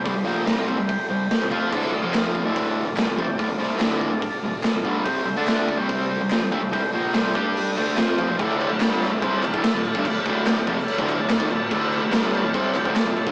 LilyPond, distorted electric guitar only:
\new Staff \with { instrumentName = "Distorted electric guitar" } { \clef bass \time 4/4 \key d \minor \tempo 4 = 144 <c g>16 <c g>16 <bes, f bes>8 <c g c'>8. <c g>8 r16 <c g>8 r16 <c g>16 <f c' f'>8 | <d, a, d>8 <d, a,>16 <f, c f>4 <d, a, d>4 <d, a,>16 <c g>16 <d, a,>16 <f, c>16 <d, a,>16 | <d, a,>16 <d, a,>16 <c g c'>8 <d, a, d>8. <d, a,>8 r16 <d, a,>8 r16 <d, a,>16 <g, d g>8 | <c g c'>8 <c g>16 <d a d'>4 <c g c'>4 <c g>16 <bes, f>16 <c g>16 <d a>16 <c g>16 |
<c g>16 <c g>16 <bes, f bes>8 <c g c'>8 <g d' g'>4 <d a d'>8 <f c' f'>8 <f c'>16 <bes, f>16 | <d, a, d>8. <d, a,>16 <g, d g>8. <d, a,>16 <c g c'>8 <d, a,>16 <d, a,>16 r16 <d, a,>8 <g, d>16 | <d, a,>16 r16 <d, a, d>8. r16 <f, c>16 r8 <d, a, d>8 <d, a,>8 <gis, ees>16 <d, a,>8 | <d, a, d>8. <d, a,>16 <g, d g>8. <d, a,>16 <c g c'>8 <d, a,>16 <d, a,>16 r16 <d, a,>8 <g, d>16 | }